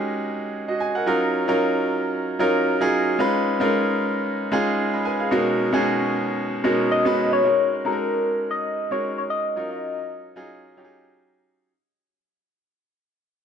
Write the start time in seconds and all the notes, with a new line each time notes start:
Already playing: G#3 C#4 D#4 F#4 G4 G#4 A#4
0.68 F#4 D#5
0.80 G#5
0.95 A#4 F#5
1.06 F#3 C#4 D#4 F4 A#4
1.48 F#3 C#4 D#4 F4 A#4
2.39 F#3 C#4 D#4 F4 A#4
2.80 F#3 C#4 D#4 F4 G#4
3.19 G#3 C#4 D#4 F4 B4
3.60 G#3 C#4 D#4 F4 A#4
4.52 G#3 C#4 D#4 F4 G#4
4.94 D#5 B5
5.05 B4 G#5
5.20 G#4 F5
5.31 B2 G#3 C#4 D#4 F#4 A#4
5.72 B2 G#3 C#4 D#4 F#4 G#4
6.64 B2 G#3 C#4 D#4 F#4 A#4
6.92 D#5
7.05 B2 G#3 C#4 D#4 F#4 B4
7.33 C#5
7.44 G#3 C#4 D#4 F#4 A#4
7.85 G#3 C#4 D#4 F#4 A4 A#4
7.92 A#4
8.51 D#5
8.91 G#3 C#4 D#4 F#4 A#4 C#5
9.18 C#5
9.30 D#5
9.56 F#3 C#4 D#4 F4 A#4
10.36 F#3 C#4 D#4 F4 G#4
10.77 F#3 C#4 D#4 F4 G4
10.84 G#4